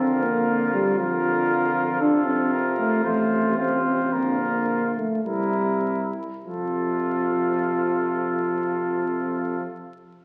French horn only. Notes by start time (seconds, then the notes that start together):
Already playing: C4
0.23 A#3
0.73 G3
0.99 F3
2.00 D4
2.26 C4
2.78 A3
3.04 A3
3.57 C4
3.85 C4
4.39 A#3
4.96 A3
5.24 G3
6.45 F3